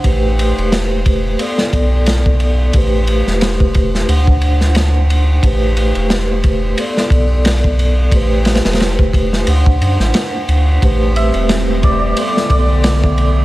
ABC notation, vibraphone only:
X:1
M:4/4
L:1/8
Q:"Swing 16ths" 1/4=89
K:Ador
V:1 name="Vibraphone"
[A,GBc]4 [B,Ad]4 | [A,GBc]4 [Dcf]4 | [A,GBc]4 [B,Ad]4 | [A,GBc]4 [Dcf]4 |
[A,GBc]4 [B,Ad]4 |]